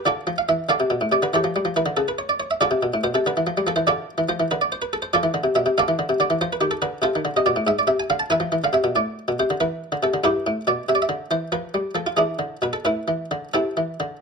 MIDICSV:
0, 0, Header, 1, 2, 480
1, 0, Start_track
1, 0, Tempo, 424929
1, 32, Time_signature, 12, 3, 24, 8
1, 11071, Tempo, 434468
1, 13471, Tempo, 450113
1, 15860, End_track
2, 0, Start_track
2, 0, Title_t, "Harpsichord"
2, 0, Program_c, 0, 6
2, 62, Note_on_c, 0, 50, 68
2, 69, Note_on_c, 0, 74, 81
2, 75, Note_on_c, 0, 65, 57
2, 85, Note_on_c, 0, 69, 62
2, 228, Note_off_c, 0, 50, 0
2, 305, Note_on_c, 0, 53, 65
2, 366, Note_off_c, 0, 74, 0
2, 397, Note_off_c, 0, 65, 0
2, 402, Note_off_c, 0, 69, 0
2, 431, Note_on_c, 0, 77, 62
2, 471, Note_off_c, 0, 53, 0
2, 538, Note_off_c, 0, 77, 0
2, 551, Note_on_c, 0, 52, 52
2, 551, Note_on_c, 0, 76, 78
2, 715, Note_off_c, 0, 52, 0
2, 745, Note_off_c, 0, 76, 0
2, 777, Note_on_c, 0, 50, 62
2, 783, Note_on_c, 0, 77, 74
2, 789, Note_on_c, 0, 69, 65
2, 795, Note_on_c, 0, 74, 60
2, 885, Note_off_c, 0, 50, 0
2, 903, Note_on_c, 0, 48, 55
2, 1008, Note_off_c, 0, 48, 0
2, 1019, Note_on_c, 0, 47, 58
2, 1127, Note_off_c, 0, 47, 0
2, 1142, Note_on_c, 0, 45, 57
2, 1224, Note_off_c, 0, 69, 0
2, 1228, Note_off_c, 0, 74, 0
2, 1248, Note_off_c, 0, 45, 0
2, 1254, Note_off_c, 0, 77, 0
2, 1261, Note_on_c, 0, 48, 59
2, 1268, Note_on_c, 0, 74, 86
2, 1368, Note_off_c, 0, 48, 0
2, 1377, Note_off_c, 0, 74, 0
2, 1383, Note_on_c, 0, 50, 65
2, 1391, Note_on_c, 0, 71, 63
2, 1491, Note_off_c, 0, 50, 0
2, 1500, Note_off_c, 0, 71, 0
2, 1508, Note_on_c, 0, 52, 59
2, 1515, Note_on_c, 0, 73, 77
2, 1528, Note_on_c, 0, 69, 57
2, 1529, Note_on_c, 0, 67, 60
2, 1614, Note_off_c, 0, 52, 0
2, 1628, Note_on_c, 0, 53, 65
2, 1734, Note_off_c, 0, 53, 0
2, 1760, Note_on_c, 0, 55, 58
2, 1862, Note_off_c, 0, 55, 0
2, 1865, Note_on_c, 0, 53, 65
2, 1961, Note_off_c, 0, 69, 0
2, 1962, Note_off_c, 0, 67, 0
2, 1974, Note_off_c, 0, 53, 0
2, 1988, Note_off_c, 0, 73, 0
2, 1991, Note_on_c, 0, 52, 61
2, 1996, Note_on_c, 0, 71, 73
2, 2098, Note_off_c, 0, 52, 0
2, 2098, Note_on_c, 0, 50, 65
2, 2211, Note_off_c, 0, 50, 0
2, 2222, Note_on_c, 0, 69, 68
2, 2226, Note_off_c, 0, 71, 0
2, 2227, Note_on_c, 0, 49, 58
2, 2338, Note_off_c, 0, 69, 0
2, 2353, Note_on_c, 0, 71, 64
2, 2463, Note_off_c, 0, 71, 0
2, 2468, Note_on_c, 0, 73, 56
2, 2580, Note_off_c, 0, 73, 0
2, 2589, Note_on_c, 0, 74, 69
2, 2700, Note_off_c, 0, 74, 0
2, 2707, Note_on_c, 0, 73, 86
2, 2737, Note_off_c, 0, 49, 0
2, 2818, Note_off_c, 0, 73, 0
2, 2833, Note_on_c, 0, 76, 66
2, 2941, Note_off_c, 0, 76, 0
2, 2946, Note_on_c, 0, 50, 72
2, 2946, Note_on_c, 0, 74, 91
2, 2958, Note_on_c, 0, 69, 72
2, 2962, Note_on_c, 0, 65, 73
2, 3052, Note_off_c, 0, 50, 0
2, 3060, Note_on_c, 0, 48, 60
2, 3169, Note_off_c, 0, 48, 0
2, 3192, Note_on_c, 0, 47, 63
2, 3295, Note_off_c, 0, 47, 0
2, 3317, Note_on_c, 0, 45, 57
2, 3391, Note_off_c, 0, 69, 0
2, 3394, Note_off_c, 0, 65, 0
2, 3419, Note_off_c, 0, 45, 0
2, 3419, Note_off_c, 0, 74, 0
2, 3430, Note_on_c, 0, 47, 54
2, 3433, Note_on_c, 0, 72, 80
2, 3536, Note_off_c, 0, 47, 0
2, 3542, Note_off_c, 0, 72, 0
2, 3551, Note_on_c, 0, 48, 66
2, 3560, Note_on_c, 0, 69, 67
2, 3657, Note_off_c, 0, 48, 0
2, 3667, Note_off_c, 0, 69, 0
2, 3687, Note_on_c, 0, 50, 66
2, 3696, Note_on_c, 0, 71, 80
2, 3785, Note_off_c, 0, 50, 0
2, 3807, Note_on_c, 0, 52, 54
2, 3906, Note_off_c, 0, 52, 0
2, 3917, Note_on_c, 0, 53, 61
2, 4020, Note_off_c, 0, 53, 0
2, 4037, Note_on_c, 0, 55, 63
2, 4140, Note_off_c, 0, 55, 0
2, 4142, Note_on_c, 0, 53, 71
2, 4155, Note_on_c, 0, 69, 76
2, 4156, Note_off_c, 0, 71, 0
2, 4247, Note_on_c, 0, 72, 71
2, 4249, Note_on_c, 0, 52, 63
2, 4252, Note_off_c, 0, 53, 0
2, 4264, Note_off_c, 0, 69, 0
2, 4365, Note_off_c, 0, 52, 0
2, 4370, Note_off_c, 0, 72, 0
2, 4371, Note_on_c, 0, 50, 64
2, 4373, Note_on_c, 0, 74, 96
2, 4381, Note_on_c, 0, 69, 63
2, 4383, Note_on_c, 0, 65, 61
2, 4630, Note_off_c, 0, 50, 0
2, 4721, Note_on_c, 0, 52, 63
2, 4779, Note_off_c, 0, 74, 0
2, 4821, Note_off_c, 0, 69, 0
2, 4822, Note_off_c, 0, 65, 0
2, 4839, Note_off_c, 0, 52, 0
2, 4842, Note_on_c, 0, 53, 65
2, 4847, Note_on_c, 0, 72, 81
2, 4960, Note_off_c, 0, 53, 0
2, 4966, Note_on_c, 0, 52, 66
2, 5052, Note_off_c, 0, 72, 0
2, 5081, Note_off_c, 0, 52, 0
2, 5095, Note_on_c, 0, 71, 79
2, 5101, Note_on_c, 0, 50, 55
2, 5212, Note_off_c, 0, 71, 0
2, 5212, Note_on_c, 0, 74, 68
2, 5330, Note_off_c, 0, 74, 0
2, 5333, Note_on_c, 0, 72, 67
2, 5442, Note_on_c, 0, 71, 60
2, 5450, Note_off_c, 0, 72, 0
2, 5565, Note_off_c, 0, 71, 0
2, 5571, Note_on_c, 0, 69, 90
2, 5614, Note_off_c, 0, 50, 0
2, 5673, Note_on_c, 0, 72, 58
2, 5690, Note_off_c, 0, 69, 0
2, 5800, Note_off_c, 0, 72, 0
2, 5800, Note_on_c, 0, 53, 75
2, 5800, Note_on_c, 0, 74, 92
2, 5813, Note_on_c, 0, 69, 76
2, 5816, Note_on_c, 0, 65, 74
2, 5911, Note_on_c, 0, 52, 68
2, 5917, Note_off_c, 0, 53, 0
2, 6032, Note_off_c, 0, 52, 0
2, 6033, Note_on_c, 0, 50, 67
2, 6140, Note_on_c, 0, 48, 61
2, 6152, Note_off_c, 0, 50, 0
2, 6253, Note_off_c, 0, 69, 0
2, 6255, Note_off_c, 0, 65, 0
2, 6265, Note_off_c, 0, 48, 0
2, 6273, Note_on_c, 0, 47, 64
2, 6279, Note_on_c, 0, 76, 94
2, 6280, Note_off_c, 0, 74, 0
2, 6392, Note_off_c, 0, 47, 0
2, 6393, Note_on_c, 0, 48, 64
2, 6512, Note_off_c, 0, 48, 0
2, 6521, Note_off_c, 0, 76, 0
2, 6527, Note_on_c, 0, 77, 80
2, 6528, Note_on_c, 0, 50, 60
2, 6543, Note_on_c, 0, 69, 67
2, 6543, Note_on_c, 0, 74, 75
2, 6640, Note_off_c, 0, 50, 0
2, 6645, Note_on_c, 0, 52, 62
2, 6758, Note_off_c, 0, 52, 0
2, 6766, Note_on_c, 0, 50, 62
2, 6878, Note_off_c, 0, 50, 0
2, 6882, Note_on_c, 0, 48, 61
2, 6932, Note_off_c, 0, 77, 0
2, 6978, Note_off_c, 0, 69, 0
2, 6978, Note_off_c, 0, 74, 0
2, 6995, Note_off_c, 0, 48, 0
2, 7004, Note_on_c, 0, 50, 67
2, 7009, Note_on_c, 0, 74, 82
2, 7115, Note_off_c, 0, 50, 0
2, 7119, Note_on_c, 0, 52, 72
2, 7207, Note_off_c, 0, 74, 0
2, 7231, Note_off_c, 0, 52, 0
2, 7243, Note_on_c, 0, 53, 58
2, 7245, Note_on_c, 0, 72, 84
2, 7360, Note_off_c, 0, 72, 0
2, 7371, Note_on_c, 0, 71, 70
2, 7412, Note_off_c, 0, 53, 0
2, 7463, Note_on_c, 0, 51, 64
2, 7467, Note_on_c, 0, 67, 54
2, 7483, Note_off_c, 0, 71, 0
2, 7579, Note_on_c, 0, 69, 63
2, 7590, Note_off_c, 0, 67, 0
2, 7639, Note_off_c, 0, 51, 0
2, 7702, Note_on_c, 0, 71, 75
2, 7705, Note_on_c, 0, 50, 58
2, 7706, Note_off_c, 0, 69, 0
2, 7880, Note_off_c, 0, 50, 0
2, 7928, Note_on_c, 0, 48, 55
2, 7940, Note_on_c, 0, 72, 69
2, 7945, Note_on_c, 0, 69, 53
2, 7946, Note_on_c, 0, 65, 56
2, 7947, Note_off_c, 0, 71, 0
2, 8053, Note_off_c, 0, 48, 0
2, 8081, Note_on_c, 0, 51, 62
2, 8188, Note_on_c, 0, 50, 58
2, 8191, Note_off_c, 0, 51, 0
2, 8251, Note_off_c, 0, 72, 0
2, 8283, Note_off_c, 0, 69, 0
2, 8284, Note_off_c, 0, 65, 0
2, 8304, Note_off_c, 0, 50, 0
2, 8319, Note_on_c, 0, 48, 59
2, 8322, Note_on_c, 0, 75, 61
2, 8427, Note_on_c, 0, 47, 64
2, 8428, Note_on_c, 0, 74, 84
2, 8431, Note_off_c, 0, 48, 0
2, 8438, Note_off_c, 0, 75, 0
2, 8542, Note_on_c, 0, 45, 55
2, 8544, Note_off_c, 0, 47, 0
2, 8635, Note_off_c, 0, 74, 0
2, 8661, Note_on_c, 0, 44, 70
2, 8662, Note_off_c, 0, 45, 0
2, 8673, Note_on_c, 0, 76, 102
2, 8793, Note_off_c, 0, 76, 0
2, 8796, Note_on_c, 0, 74, 62
2, 8838, Note_off_c, 0, 44, 0
2, 8893, Note_on_c, 0, 48, 67
2, 8896, Note_on_c, 0, 76, 67
2, 8914, Note_off_c, 0, 74, 0
2, 9024, Note_off_c, 0, 76, 0
2, 9032, Note_on_c, 0, 80, 67
2, 9072, Note_off_c, 0, 48, 0
2, 9148, Note_on_c, 0, 77, 90
2, 9149, Note_on_c, 0, 50, 61
2, 9151, Note_off_c, 0, 80, 0
2, 9257, Note_on_c, 0, 81, 68
2, 9269, Note_off_c, 0, 77, 0
2, 9321, Note_off_c, 0, 50, 0
2, 9378, Note_on_c, 0, 52, 65
2, 9379, Note_on_c, 0, 80, 87
2, 9383, Note_off_c, 0, 81, 0
2, 9390, Note_on_c, 0, 71, 67
2, 9400, Note_on_c, 0, 76, 65
2, 9490, Note_on_c, 0, 53, 59
2, 9497, Note_off_c, 0, 52, 0
2, 9613, Note_off_c, 0, 53, 0
2, 9625, Note_on_c, 0, 52, 65
2, 9689, Note_off_c, 0, 80, 0
2, 9725, Note_off_c, 0, 71, 0
2, 9730, Note_off_c, 0, 76, 0
2, 9742, Note_off_c, 0, 52, 0
2, 9757, Note_on_c, 0, 50, 62
2, 9763, Note_on_c, 0, 77, 66
2, 9861, Note_on_c, 0, 48, 59
2, 9868, Note_off_c, 0, 50, 0
2, 9873, Note_on_c, 0, 76, 84
2, 9877, Note_off_c, 0, 77, 0
2, 9980, Note_off_c, 0, 48, 0
2, 9985, Note_on_c, 0, 47, 65
2, 10102, Note_off_c, 0, 47, 0
2, 10112, Note_off_c, 0, 76, 0
2, 10116, Note_on_c, 0, 45, 62
2, 10120, Note_on_c, 0, 74, 76
2, 10373, Note_off_c, 0, 45, 0
2, 10485, Note_on_c, 0, 47, 57
2, 10523, Note_off_c, 0, 74, 0
2, 10591, Note_off_c, 0, 47, 0
2, 10612, Note_on_c, 0, 48, 52
2, 10613, Note_on_c, 0, 72, 74
2, 10715, Note_off_c, 0, 48, 0
2, 10735, Note_on_c, 0, 50, 60
2, 10807, Note_off_c, 0, 72, 0
2, 10837, Note_off_c, 0, 50, 0
2, 10849, Note_on_c, 0, 52, 50
2, 10849, Note_on_c, 0, 71, 74
2, 11105, Note_off_c, 0, 52, 0
2, 11205, Note_on_c, 0, 50, 57
2, 11252, Note_off_c, 0, 71, 0
2, 11313, Note_off_c, 0, 50, 0
2, 11320, Note_on_c, 0, 48, 61
2, 11330, Note_on_c, 0, 69, 78
2, 11431, Note_off_c, 0, 48, 0
2, 11442, Note_on_c, 0, 50, 53
2, 11551, Note_off_c, 0, 50, 0
2, 11552, Note_on_c, 0, 43, 58
2, 11554, Note_on_c, 0, 71, 78
2, 11558, Note_on_c, 0, 64, 62
2, 11561, Note_off_c, 0, 69, 0
2, 11568, Note_on_c, 0, 67, 68
2, 11723, Note_off_c, 0, 43, 0
2, 11805, Note_on_c, 0, 45, 59
2, 11957, Note_off_c, 0, 71, 0
2, 11971, Note_off_c, 0, 45, 0
2, 11998, Note_off_c, 0, 64, 0
2, 12003, Note_off_c, 0, 67, 0
2, 12034, Note_on_c, 0, 47, 51
2, 12041, Note_on_c, 0, 74, 76
2, 12204, Note_off_c, 0, 47, 0
2, 12238, Note_off_c, 0, 74, 0
2, 12270, Note_on_c, 0, 48, 53
2, 12277, Note_on_c, 0, 76, 64
2, 12342, Note_on_c, 0, 74, 53
2, 12349, Note_off_c, 0, 76, 0
2, 12419, Note_on_c, 0, 76, 61
2, 12420, Note_off_c, 0, 74, 0
2, 12441, Note_off_c, 0, 48, 0
2, 12496, Note_on_c, 0, 50, 58
2, 12673, Note_off_c, 0, 50, 0
2, 12736, Note_on_c, 0, 52, 59
2, 12742, Note_on_c, 0, 72, 68
2, 12746, Note_off_c, 0, 76, 0
2, 12914, Note_off_c, 0, 52, 0
2, 12972, Note_on_c, 0, 53, 55
2, 12974, Note_on_c, 0, 71, 60
2, 12986, Note_off_c, 0, 72, 0
2, 13152, Note_off_c, 0, 53, 0
2, 13217, Note_on_c, 0, 55, 48
2, 13391, Note_off_c, 0, 71, 0
2, 13396, Note_off_c, 0, 55, 0
2, 13442, Note_on_c, 0, 53, 47
2, 13451, Note_on_c, 0, 69, 62
2, 13569, Note_on_c, 0, 65, 47
2, 13579, Note_off_c, 0, 69, 0
2, 13623, Note_off_c, 0, 53, 0
2, 13677, Note_on_c, 0, 52, 47
2, 13680, Note_on_c, 0, 68, 61
2, 13689, Note_on_c, 0, 62, 43
2, 13695, Note_on_c, 0, 64, 38
2, 13697, Note_off_c, 0, 65, 0
2, 13859, Note_off_c, 0, 52, 0
2, 13915, Note_on_c, 0, 50, 44
2, 14097, Note_off_c, 0, 68, 0
2, 14098, Note_off_c, 0, 50, 0
2, 14141, Note_off_c, 0, 62, 0
2, 14144, Note_off_c, 0, 64, 0
2, 14161, Note_on_c, 0, 47, 48
2, 14173, Note_on_c, 0, 71, 64
2, 14279, Note_on_c, 0, 69, 52
2, 14300, Note_off_c, 0, 71, 0
2, 14345, Note_off_c, 0, 47, 0
2, 14405, Note_on_c, 0, 45, 52
2, 14408, Note_on_c, 0, 71, 74
2, 14414, Note_off_c, 0, 69, 0
2, 14419, Note_on_c, 0, 64, 50
2, 14589, Note_off_c, 0, 45, 0
2, 14648, Note_on_c, 0, 52, 44
2, 14831, Note_off_c, 0, 52, 0
2, 14899, Note_on_c, 0, 50, 46
2, 15035, Note_off_c, 0, 71, 0
2, 15078, Note_off_c, 0, 50, 0
2, 15108, Note_off_c, 0, 64, 0
2, 15138, Note_on_c, 0, 69, 53
2, 15139, Note_on_c, 0, 48, 42
2, 15148, Note_on_c, 0, 64, 38
2, 15152, Note_on_c, 0, 60, 39
2, 15318, Note_off_c, 0, 48, 0
2, 15388, Note_on_c, 0, 52, 46
2, 15562, Note_off_c, 0, 52, 0
2, 15633, Note_on_c, 0, 50, 48
2, 15804, Note_off_c, 0, 50, 0
2, 15860, Note_off_c, 0, 60, 0
2, 15860, Note_off_c, 0, 64, 0
2, 15860, Note_off_c, 0, 69, 0
2, 15860, End_track
0, 0, End_of_file